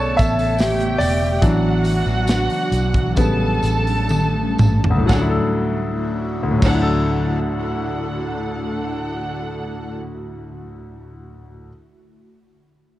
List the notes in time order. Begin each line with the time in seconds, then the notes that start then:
Already playing: B1 C#3 A3 B3 A4 B4 C#5 D5 A5
0.00 tambourine
0.17 A1 E5, kick, hi-hat pedal, open hi-hat, tambourine
0.39 open hi-hat, tambourine
0.59 G4 G5, snare, hi-hat pedal, open hi-hat, tambourine
0.80 hi-hat pedal
0.98 E1 D5, hi-hat pedal, open hi-hat, tambourine
1.42 A1 E3 F#3 D4 F#4 F#5, kick, hi-hat pedal, open hi-hat, tambourine
1.84 hi-hat pedal, open hi-hat, tambourine
2.06 A1, tambourine
2.27 snare, hi-hat pedal, open hi-hat, tambourine
2.50 open hi-hat
2.72 B1, hi-hat pedal, open hi-hat, tambourine
2.94 kick, hi-hat pedal
3.16 A1 C#3 G3 A3 B3 C#4 A4 A5, kick, hi-hat pedal, open hi-hat, tambourine
3.62 A1, hi-hat pedal, open hi-hat, tambourine
3.87 open hi-hat
4.09 high tom, tambourine
4.58 A1, mid tom, tambourine
4.84 floor tom
4.90 D2
4.98 A2
5.06 D2 D3 F#3 D4 E4 A4 F#5, kick, tambourine
5.10 A3 D4 F#4, snare
5.21 E4
5.29 A4
6.43 D2
6.51 A2
6.59 D2 F#3, kick, crash, tambourine
6.63 D4 A4 F#5
6.74 E4
6.82 A4